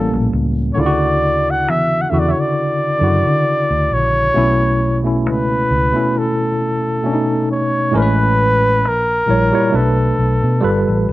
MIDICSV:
0, 0, Header, 1, 4, 480
1, 0, Start_track
1, 0, Tempo, 895522
1, 412, Time_signature, 4, 2, 24, 8
1, 5964, End_track
2, 0, Start_track
2, 0, Title_t, "Flugelhorn"
2, 0, Program_c, 0, 56
2, 0, Note_on_c, 0, 69, 81
2, 175, Note_off_c, 0, 69, 0
2, 394, Note_on_c, 0, 73, 72
2, 430, Note_on_c, 0, 74, 96
2, 438, Note_off_c, 0, 73, 0
2, 806, Note_on_c, 0, 78, 90
2, 814, Note_off_c, 0, 74, 0
2, 911, Note_on_c, 0, 76, 97
2, 919, Note_off_c, 0, 78, 0
2, 1080, Note_on_c, 0, 78, 76
2, 1088, Note_off_c, 0, 76, 0
2, 1125, Note_on_c, 0, 76, 72
2, 1133, Note_off_c, 0, 78, 0
2, 1175, Note_on_c, 0, 74, 75
2, 1183, Note_off_c, 0, 76, 0
2, 1221, Note_on_c, 0, 76, 76
2, 1229, Note_off_c, 0, 74, 0
2, 1239, Note_on_c, 0, 73, 70
2, 1247, Note_off_c, 0, 76, 0
2, 1287, Note_on_c, 0, 74, 96
2, 1295, Note_off_c, 0, 73, 0
2, 2110, Note_on_c, 0, 73, 96
2, 2118, Note_off_c, 0, 74, 0
2, 2686, Note_off_c, 0, 73, 0
2, 2833, Note_on_c, 0, 71, 91
2, 3313, Note_on_c, 0, 69, 77
2, 3321, Note_off_c, 0, 71, 0
2, 4022, Note_off_c, 0, 69, 0
2, 4025, Note_on_c, 0, 73, 90
2, 4274, Note_on_c, 0, 71, 106
2, 4282, Note_off_c, 0, 73, 0
2, 4761, Note_on_c, 0, 70, 107
2, 4769, Note_off_c, 0, 71, 0
2, 5231, Note_on_c, 0, 69, 84
2, 5239, Note_off_c, 0, 70, 0
2, 5941, Note_off_c, 0, 69, 0
2, 5964, End_track
3, 0, Start_track
3, 0, Title_t, "Tine electric piano"
3, 0, Program_c, 1, 4
3, 0, Note_on_c, 1, 45, 70
3, 0, Note_on_c, 1, 55, 62
3, 0, Note_on_c, 1, 58, 77
3, 0, Note_on_c, 1, 61, 66
3, 37, Control_c, 1, 64, 127
3, 321, Note_off_c, 1, 45, 0
3, 323, Note_off_c, 1, 55, 0
3, 328, Note_off_c, 1, 61, 0
3, 331, Note_off_c, 1, 58, 0
3, 403, Note_on_c, 1, 50, 87
3, 412, Note_on_c, 1, 49, 86
3, 418, Control_c, 1, 64, 0
3, 418, Note_on_c, 1, 64, 74
3, 425, Note_on_c, 1, 65, 71
3, 457, Note_off_c, 1, 65, 0
3, 461, Note_on_c, 1, 66, 98
3, 511, Control_c, 1, 64, 127
3, 989, Note_off_c, 1, 50, 0
3, 994, Note_off_c, 1, 49, 0
3, 996, Note_off_c, 1, 64, 0
3, 1018, Note_off_c, 1, 66, 0
3, 1125, Note_on_c, 1, 50, 64
3, 1134, Note_on_c, 1, 49, 66
3, 1142, Note_on_c, 1, 64, 65
3, 1147, Note_on_c, 1, 66, 74
3, 1520, Note_off_c, 1, 50, 0
3, 1524, Note_off_c, 1, 49, 0
3, 1528, Note_off_c, 1, 64, 0
3, 1531, Note_off_c, 1, 66, 0
3, 1605, Note_on_c, 1, 50, 62
3, 1613, Note_on_c, 1, 49, 59
3, 1622, Note_on_c, 1, 64, 61
3, 1626, Note_on_c, 1, 66, 69
3, 2190, Note_off_c, 1, 50, 0
3, 2194, Note_off_c, 1, 49, 0
3, 2199, Note_off_c, 1, 64, 0
3, 2201, Note_off_c, 1, 66, 0
3, 2326, Note_on_c, 1, 47, 88
3, 2334, Note_on_c, 1, 57, 78
3, 2337, Control_c, 1, 64, 0
3, 2338, Note_on_c, 1, 61, 74
3, 2346, Note_on_c, 1, 64, 97
3, 2418, Control_c, 1, 64, 127
3, 2620, Note_off_c, 1, 47, 0
3, 2624, Note_off_c, 1, 57, 0
3, 2626, Note_off_c, 1, 61, 0
3, 2630, Note_off_c, 1, 64, 0
3, 2696, Note_on_c, 1, 47, 68
3, 2703, Note_on_c, 1, 57, 62
3, 2711, Note_on_c, 1, 61, 59
3, 2717, Note_on_c, 1, 64, 66
3, 3072, Note_off_c, 1, 47, 0
3, 3075, Note_off_c, 1, 57, 0
3, 3079, Note_off_c, 1, 61, 0
3, 3082, Note_off_c, 1, 64, 0
3, 3175, Note_on_c, 1, 47, 67
3, 3183, Note_on_c, 1, 57, 63
3, 3191, Note_on_c, 1, 61, 62
3, 3197, Note_on_c, 1, 64, 77
3, 3759, Note_off_c, 1, 47, 0
3, 3766, Note_off_c, 1, 57, 0
3, 3766, Note_on_c, 1, 47, 68
3, 3773, Note_on_c, 1, 57, 66
3, 3775, Note_off_c, 1, 61, 0
3, 3778, Note_off_c, 1, 64, 0
3, 3779, Control_c, 1, 64, 0
3, 3782, Note_on_c, 1, 61, 67
3, 3788, Note_on_c, 1, 62, 62
3, 3818, Note_off_c, 1, 62, 0
3, 3823, Note_on_c, 1, 63, 79
3, 3857, Control_c, 1, 64, 127
3, 4162, Note_off_c, 1, 47, 0
3, 4166, Note_off_c, 1, 57, 0
3, 4171, Note_off_c, 1, 61, 0
3, 4191, Note_off_c, 1, 63, 0
3, 4241, Note_on_c, 1, 45, 98
3, 4249, Note_on_c, 1, 56, 85
3, 4256, Note_on_c, 1, 61, 82
3, 4259, Control_c, 1, 64, 0
3, 4263, Note_on_c, 1, 70, 83
3, 4296, Note_off_c, 1, 70, 0
3, 4299, Note_on_c, 1, 71, 100
3, 4367, Control_c, 1, 64, 127
3, 4726, Note_off_c, 1, 45, 0
3, 4730, Note_off_c, 1, 56, 0
3, 4734, Note_off_c, 1, 61, 0
3, 4739, Control_c, 1, 64, 0
3, 4756, Note_off_c, 1, 71, 0
3, 4839, Control_c, 1, 64, 127
3, 4963, Note_on_c, 1, 46, 69
3, 4972, Note_on_c, 1, 55, 67
3, 4979, Note_on_c, 1, 64, 67
3, 4987, Note_on_c, 1, 73, 78
3, 5072, Note_off_c, 1, 46, 0
3, 5077, Note_off_c, 1, 55, 0
3, 5080, Note_off_c, 1, 64, 0
3, 5084, Note_off_c, 1, 73, 0
3, 5098, Note_on_c, 1, 46, 77
3, 5105, Note_on_c, 1, 55, 69
3, 5113, Note_on_c, 1, 64, 68
3, 5118, Note_on_c, 1, 73, 85
3, 5203, Note_on_c, 1, 47, 82
3, 5209, Note_off_c, 1, 46, 0
3, 5210, Note_on_c, 1, 57, 80
3, 5212, Note_off_c, 1, 55, 0
3, 5216, Note_off_c, 1, 64, 0
3, 5218, Control_c, 1, 64, 0
3, 5219, Note_off_c, 1, 73, 0
3, 5220, Note_on_c, 1, 62, 78
3, 5226, Note_on_c, 1, 71, 85
3, 5321, Control_c, 1, 64, 127
3, 5601, Note_off_c, 1, 47, 0
3, 5605, Note_off_c, 1, 57, 0
3, 5609, Note_off_c, 1, 62, 0
3, 5613, Note_off_c, 1, 71, 0
3, 5684, Note_on_c, 1, 55, 85
3, 5694, Note_on_c, 1, 65, 71
3, 5699, Control_c, 1, 64, 0
3, 5699, Note_on_c, 1, 69, 71
3, 5705, Note_on_c, 1, 71, 86
3, 5784, Control_c, 1, 64, 127
3, 5964, Note_off_c, 1, 55, 0
3, 5964, Note_off_c, 1, 65, 0
3, 5964, Note_off_c, 1, 69, 0
3, 5964, Note_off_c, 1, 71, 0
3, 5964, End_track
4, 0, Start_track
4, 0, Title_t, "Fingered electric bass"
4, 0, Program_c, 2, 33
4, 70, Note_on_c, 2, 34, 81
4, 158, Note_off_c, 2, 34, 0
4, 177, Note_on_c, 2, 37, 86
4, 375, Note_off_c, 2, 37, 0
4, 416, Note_on_c, 2, 38, 82
4, 901, Note_off_c, 2, 38, 0
4, 901, Note_on_c, 2, 40, 78
4, 1098, Note_off_c, 2, 40, 0
4, 1136, Note_on_c, 2, 40, 80
4, 1245, Note_off_c, 2, 40, 0
4, 1614, Note_on_c, 2, 42, 84
4, 1724, Note_off_c, 2, 42, 0
4, 1750, Note_on_c, 2, 50, 81
4, 1838, Note_off_c, 2, 50, 0
4, 1986, Note_on_c, 2, 38, 84
4, 2075, Note_off_c, 2, 38, 0
4, 2098, Note_on_c, 2, 34, 88
4, 2296, Note_off_c, 2, 34, 0
4, 2338, Note_on_c, 2, 35, 98
4, 2821, Note_off_c, 2, 35, 0
4, 2821, Note_on_c, 2, 37, 82
4, 3018, Note_off_c, 2, 37, 0
4, 3059, Note_on_c, 2, 37, 76
4, 3166, Note_off_c, 2, 37, 0
4, 4259, Note_on_c, 2, 33, 96
4, 4742, Note_off_c, 2, 33, 0
4, 4742, Note_on_c, 2, 34, 86
4, 4939, Note_off_c, 2, 34, 0
4, 4980, Note_on_c, 2, 34, 96
4, 5087, Note_off_c, 2, 34, 0
4, 5220, Note_on_c, 2, 35, 88
4, 5417, Note_off_c, 2, 35, 0
4, 5461, Note_on_c, 2, 35, 89
4, 5568, Note_off_c, 2, 35, 0
4, 5592, Note_on_c, 2, 47, 86
4, 5679, Note_off_c, 2, 47, 0
4, 5702, Note_on_c, 2, 31, 103
4, 5809, Note_off_c, 2, 31, 0
4, 5833, Note_on_c, 2, 33, 93
4, 5920, Note_off_c, 2, 33, 0
4, 5942, Note_on_c, 2, 29, 100
4, 5964, Note_off_c, 2, 29, 0
4, 5964, End_track
0, 0, End_of_file